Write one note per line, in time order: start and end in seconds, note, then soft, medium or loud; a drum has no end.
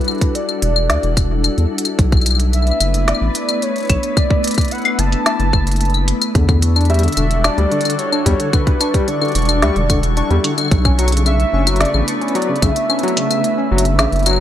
0.00 1.95 G3 medium
0.00 6.31 D4 medium
0.00 6.31 E4 medium
0.00 1.95 F#4 medium
0.00 1.95 A4 medium
0.00 0.35 B4 medium
0.00 closed hi-hat soft
0.04 closed hi-hat soft
0.08 closed hi-hat soft
0.08 claves medium
0.11 closed hi-hat soft
0.15 closed hi-hat soft
0.18 kick medium
0.18 closed hi-hat soft
0.21 closed hi-hat medium
0.35 1.67 D5 loud
0.35 closed hi-hat medium
0.49 closed hi-hat soft
0.49 claves medium
0.62 0.91 E1 medium
0.62 closed hi-hat medium
0.76 claves medium
0.90 0.98 D2 medium
0.90 snare loud
0.90 closed hi-hat medium
1.03 1.49 E1 medium
1.03 closed hi-hat soft
1.17 kick medium
1.17 closed hi-hat medium
1.17 claves medium
1.44 closed hi-hat medium
1.44 claves medium
1.58 1.66 E2 medium
1.58 closed hi-hat soft
1.78 closed hi-hat medium
1.85 closed hi-hat medium
1.85 claves medium
1.99 2.72 B1 loud
1.99 6.31 A3 medium
1.99 6.31 B3 medium
1.99 6.31 B4 medium
1.99 kick loud
1.99 closed hi-hat medium
2.12 kick loud
2.12 closed hi-hat soft
2.12 claves soft
2.17 claves soft
2.21 closed hi-hat soft
2.21 claves soft
2.26 closed hi-hat medium
2.26 claves medium
2.31 closed hi-hat soft
2.31 claves medium
2.35 claves medium
2.40 closed hi-hat medium
2.53 3.09 E5 medium
2.53 closed hi-hat soft
2.53 claves soft
2.62 claves soft
2.67 closed hi-hat soft
2.71 claves soft
2.80 3.13 F#1 medium
2.80 closed hi-hat medium
2.80 claves medium
2.94 closed hi-hat medium
3.08 3.64 D5 medium
3.08 snare loud
3.08 closed hi-hat medium
3.15 claves medium
3.21 3.30 A1 medium
3.35 closed hi-hat medium
3.49 closed hi-hat soft
3.49 claves medium
3.62 4.18 C#5 medium
3.62 closed hi-hat medium
3.76 closed hi-hat soft
3.78 closed hi-hat soft
3.80 closed hi-hat soft
3.83 closed hi-hat soft
3.85 closed hi-hat soft
3.87 closed hi-hat soft
3.90 3.98 B1 medium
3.90 kick medium
3.90 closed hi-hat medium
3.90 claves soft
4.03 closed hi-hat medium
4.17 4.73 D5 loud
4.17 kick loud
4.17 closed hi-hat medium
4.17 claves medium
4.30 kick loud
4.44 closed hi-hat medium
4.47 closed hi-hat medium
4.51 closed hi-hat medium
4.54 kick medium
4.54 closed hi-hat soft
4.58 closed hi-hat soft
4.58 claves soft
4.61 closed hi-hat soft
4.65 closed hi-hat soft
4.68 closed hi-hat soft
4.71 5.00 F#5 loud
4.71 closed hi-hat soft
4.75 closed hi-hat soft
4.78 closed hi-hat soft
4.82 closed hi-hat soft
4.85 closed hi-hat soft
4.85 claves medium
4.99 5.15 F#1 medium
4.99 6.08 A5 loud
4.99 closed hi-hat medium
5.12 closed hi-hat medium
5.26 snare loud
5.26 closed hi-hat soft
5.26 claves soft
5.40 6.13 F#1 loud
5.40 closed hi-hat soft
5.53 kick medium
5.53 claves medium
5.67 closed hi-hat soft
5.72 closed hi-hat soft
5.76 closed hi-hat soft
5.81 closed hi-hat soft
5.90 closed hi-hat soft
5.94 closed hi-hat soft
5.94 claves soft
6.08 closed hi-hat medium
6.22 closed hi-hat medium
6.22 claves medium
6.35 7.08 E2 loud
6.35 6.44 D3 medium
6.35 10.67 G3 medium
6.35 14.40 D4 medium
6.35 10.67 D4 medium
6.35 14.40 E4 medium
6.35 10.67 F#4 medium
6.35 10.67 A4 medium
6.35 14.40 C#6 medium
6.35 kick loud
6.35 closed hi-hat soft
6.49 6.57 D3 medium
6.49 kick loud
6.49 closed hi-hat soft
6.49 claves soft
6.62 closed hi-hat medium
6.76 6.89 D4 medium
6.76 closed hi-hat soft
6.76 claves medium
6.81 closed hi-hat soft
6.85 closed hi-hat soft
6.90 7.02 G3 loud
6.90 7.46 E5 loud
6.90 closed hi-hat soft
6.94 closed hi-hat soft
6.99 closed hi-hat soft
7.03 7.12 D3 medium
7.03 closed hi-hat soft
7.08 closed hi-hat soft
7.12 closed hi-hat soft
7.17 7.49 E1 medium
7.17 7.26 D3 medium
7.17 closed hi-hat medium
7.17 claves soft
7.31 closed hi-hat medium
7.44 7.57 D4 medium
7.44 8.00 D5 loud
7.44 snare loud
7.44 closed hi-hat soft
7.44 claves medium
7.58 7.66 D2 medium
7.58 7.71 G3 medium
7.58 closed hi-hat soft
7.71 7.80 D3 medium
7.71 closed hi-hat soft
7.81 closed hi-hat soft
7.85 7.94 D3 medium
7.85 closed hi-hat soft
7.85 claves soft
7.90 closed hi-hat medium
7.99 8.55 C#5 loud
7.99 closed hi-hat soft
8.12 8.25 D4 medium
8.12 closed hi-hat soft
8.12 claves medium
8.26 8.34 E2 loud
8.26 8.39 G3 medium
8.26 kick medium
8.26 closed hi-hat medium
8.40 8.48 D3 medium
8.40 closed hi-hat medium
8.53 8.62 D3 medium
8.53 9.09 B4 loud
8.53 kick loud
8.53 closed hi-hat soft
8.53 claves soft
8.67 kick loud
8.67 closed hi-hat soft
8.81 8.93 D4 medium
8.81 closed hi-hat medium
8.81 claves medium
8.94 9.07 G3 loud
8.94 kick medium
8.94 closed hi-hat soft
9.08 9.16 D3 medium
9.08 10.44 D5 loud
9.08 closed hi-hat soft
9.22 9.30 D3 medium
9.22 closed hi-hat soft
9.22 claves medium
9.25 closed hi-hat soft
9.28 closed hi-hat soft
9.32 closed hi-hat soft
9.35 9.64 E1 medium
9.35 closed hi-hat medium
9.39 closed hi-hat soft
9.42 closed hi-hat soft
9.45 closed hi-hat soft
9.49 9.62 D4 medium
9.49 closed hi-hat soft
9.49 claves medium
9.62 9.71 D2 medium
9.62 9.75 G3 loud
9.62 snare loud
9.62 closed hi-hat soft
9.76 10.22 E1 medium
9.76 9.85 D3 medium
9.76 closed hi-hat soft
9.90 9.98 D3 medium
9.90 kick medium
9.90 closed hi-hat medium
9.90 claves medium
10.03 closed hi-hat soft
10.17 10.30 D4 medium
10.17 closed hi-hat soft
10.31 10.39 E2 loud
10.31 10.43 G3 loud
10.31 closed hi-hat soft
10.44 10.53 D3 medium
10.44 closed hi-hat medium
10.58 10.66 D3 medium
10.58 closed hi-hat medium
10.58 claves soft
10.61 claves soft
10.65 claves soft
10.71 11.45 B1 loud
10.71 14.40 A3 medium
10.71 14.40 B3 medium
10.71 14.40 D4 medium
10.71 14.40 B4 medium
10.71 kick loud
10.71 closed hi-hat medium
10.71 claves soft
10.75 claves soft
10.78 claves soft
10.82 closed hi-hat soft
10.82 claves soft
10.85 10.98 C#4 medium
10.85 kick medium
10.85 claves medium
10.99 11.12 F#3 medium
10.99 closed hi-hat medium
11.08 closed hi-hat medium
11.12 11.21 C#3 medium
11.12 closed hi-hat soft
11.17 closed hi-hat medium
11.26 11.35 C#3 medium
11.26 11.82 E5 loud
11.26 closed hi-hat soft
11.26 claves medium
11.40 closed hi-hat soft
11.53 11.86 F#1 loud
11.53 11.66 C#4 medium
11.67 11.80 F#3 medium
11.67 closed hi-hat medium
11.67 claves medium
11.76 closed hi-hat soft
11.81 11.89 C#3 medium
11.81 12.34 D5 loud
11.81 snare loud
11.81 closed hi-hat soft
11.85 closed hi-hat soft
11.94 12.03 A1 medium
11.94 12.03 C#3 medium
11.94 claves medium
12.08 closed hi-hat medium
12.21 12.34 C#4 medium
12.21 closed hi-hat soft
12.28 closed hi-hat soft
12.35 12.48 F#3 loud
12.35 12.64 D5 loud
12.35 closed hi-hat soft
12.42 closed hi-hat soft
12.49 12.57 C#3 medium
12.56 closed hi-hat soft
12.62 12.71 B1 loud
12.62 12.71 C#3 medium
12.62 14.40 E5 loud
12.62 kick medium
12.62 closed hi-hat medium
12.62 claves soft
12.76 closed hi-hat medium
12.90 13.02 C#4 medium
12.90 closed hi-hat soft
12.90 claves medium
12.99 closed hi-hat soft
13.03 13.16 F#3 loud
13.03 closed hi-hat soft
13.08 closed hi-hat soft
13.17 13.25 C#3 medium
13.17 closed hi-hat medium
13.30 13.39 C#3 medium
13.30 closed hi-hat medium
13.30 claves medium
13.44 closed hi-hat medium
13.58 13.71 C#4 medium
13.71 14.00 F#1 medium
13.71 13.84 F#3 loud
13.78 closed hi-hat medium
13.85 13.94 C#3 medium
13.85 closed hi-hat medium
13.99 14.07 A1 medium
13.99 14.07 C#3 medium
13.99 snare loud
13.99 closed hi-hat medium
13.99 claves medium
14.12 14.40 F#1 medium
14.12 closed hi-hat soft
14.16 closed hi-hat soft
14.19 closed hi-hat soft
14.23 14.39 F#3 loud
14.23 closed hi-hat soft
14.26 closed hi-hat medium
14.26 claves medium
14.29 claves medium
14.36 claves soft